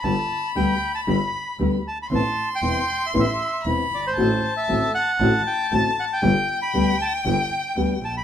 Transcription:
<<
  \new Staff \with { instrumentName = "Violin" } { \time 4/4 \key g \mixolydian \tempo 4 = 116 b''2.~ b''8 r8 | c'''2. b''4 | a''2 a''2 | g''1 | }
  \new Staff \with { instrumentName = "Bandoneon" } { \time 4/4 \key g \mixolydian a''4 g''8. a''16 b''4 r8 a''16 b''16 | a''8. g''4 e''16 e''4 r8 d''16 c''16~ | c''8. e''8. fis''4 g''8 a''8 fis''16 g''16~ | g''8. b''8. a''8 g''4 r8 a''16 b''16 | }
  \new Staff \with { instrumentName = "Nylon-string guitar" } { \time 4/4 \key g \mixolydian <d g b d' g'>8 r8 <d g b d' g'>8 r8 <d g b d' g'>8 r8 <d g b d' g'>8 r8 | <c e b c' e'>8 r8 <c e b c' e'>8 r8 <c e b c' e'>8 r8 <c e b c' e'>8 r8 | <d a c' fis'>8 r8 <d a c' fis'>8 r8 <d a c' fis'>8 r8 <d a c' fis'>8 r8 | <d g b d' g'>8 r8 <d g b d' g'>8 r8 <d g b d' g'>8 r8 <d g b d' g'>8 r8 | }
  \new Staff \with { instrumentName = "Double bass" } { \clef bass \time 4/4 \key g \mixolydian g,,8 r8 d,8 r8 g,,8 r8 d,8 r8 | a,,8 r8 e,,8 r8 a,,8 r8 e,,8 g,,8 | a,,8 r8 a,,8 r8 a,,8 r8 a,,8 r8 | g,,8 r8 d,8 r8 g,,8 r8 d,8 bes,,8 | }
>>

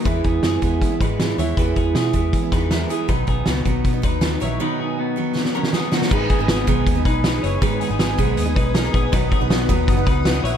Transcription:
<<
  \new Staff \with { instrumentName = "String machine" } { \time 4/4 \key gis \minor \tempo 4 = 159 << { r1 | r1 | r1 | r1 |
<b' dis'''>1~ | <b' dis'''>1~ | <b' dis'''>1 | } \\ { r1 | r1 | r1 | r1 |
gis''1~ | gis''1 | fis''1 | } >> }
  \new Staff \with { instrumentName = "Clean electric guitar" } { \time 4/4 \key gis \minor <e' b'>8 <b gis'>8 <b gis'>4. <dis' b'>4 <e' cis''>8 | <e' b'>8 <b gis'>8 <b gis'>4. <dis' b'>8 <e' ais'>8 <b gis'>8 | <dis' b'>8 <b gis'>8 <b fis'>4. <dis' b'>4 <e' cis''>8 | <dis' b'>8 <b gis'>8 <b fis'>4. <cis' ais'>8 <b gis'>8 <ais fis'>8 |
<dis' b'>8 <b gis'>8 <b gis'>4. <dis' b'>4 <e' cis''>8 | <dis' b'>8 <b gis'>8 <b gis'>4. <dis' b'>8 <dis' ais'>8 <b gis'>8 | <dis' b'>8 <b gis'>8 <b fis'>4. <dis' b'>4 <e' cis''>8 | }
  \new Staff \with { instrumentName = "Steel-string acoustic guitar" } { \time 4/4 \key gis \minor <e gis b e'>4. <e gis b e'>8. <gis b e'>16 <e gis b e'>8 <e gis b e'>8 <e gis b e'>8 | <e gis b e'>4. <e gis b e'>8. <gis b e'>16 <e gis b e'>8 <e gis b e'>8 <e gis b e'>8 | <b, dis fis b dis'>4. <dis fis b dis'>8. <fis b dis'>16 <dis fis b dis'>8 <dis fis b dis'>8 <dis fis b dis'>8 | <b, dis fis b dis'>4. <dis fis b dis'>8. <fis b dis'>16 <dis fis b dis'>8 <dis fis b dis'>8 <dis fis b dis'>8 |
<gis, dis gis b dis'>8. <gis b dis'>8. <gis, dis gis b dis'>8. <gis b dis'>4 <gis b dis'>8. | <gis, dis gis b dis'>8. <gis b dis'>8. <gis, dis gis b dis'>8. <gis b dis'>4 <gis b dis'>8. | <b, dis fis b dis'>8. <fis b dis'>8. <b, dis fis b dis'>8. <fis b dis'>4 <fis b dis'>8. | }
  \new Staff \with { instrumentName = "Fingered electric bass" } { \clef bass \time 4/4 \key gis \minor e,8 e,8 fis,8 e,8 e8 gis,4 dis,8 | e,8 e,8 b,8 e,8 e8 e,4 r8 | b,,8 b,,8 cis,8 b,,8 b,8 dis,4 ais,,8 | r1 |
gis,,8 r16 gis,,8. b,,8 dis,8 b,,4 fis,,8 | gis,,8 r16 gis,,8. b,,8 dis,8 b,,4 ais,,8 | b,,8 r16 b,,8. dis,8 fis,,8 cis,4 ais,,8 | }
  \new DrumStaff \with { instrumentName = "Drums" } \drummode { \time 4/4 <hh bd>8 <hh bd>8 <hh sn>8 <hh bd>8 <hh bd>8 <hh bd>8 <hh sn>8 hh8 | <hh bd>8 <hh bd>8 <hh sn>8 <hh bd>8 <hh bd>8 <hh bd sn>8 <hh sn>8 hh8 | <hh bd>8 <hh bd>8 <hh sn>8 <hh bd>8 <hh bd>8 <hh bd>8 <hh sn>8 hh8 | r4 r4 sn16 sn8 sn16 sn8 sn16 sn16 |
<cymc bd>8 <hh bd>8 <hh sn>8 <hh bd>8 <hh bd>8 <hh bd>8 <hh sn>8 hh8 | <hh bd>8 hh8 <hh sn>8 <hh bd>8 hh8 <hh bd>8 <hh sn>8 <hh bd>8 | <hh bd>8 <hh bd>8 <hh sn>8 <hh bd>8 <hh bd>8 <hh bd>8 <hh sn>8 hh8 | }
>>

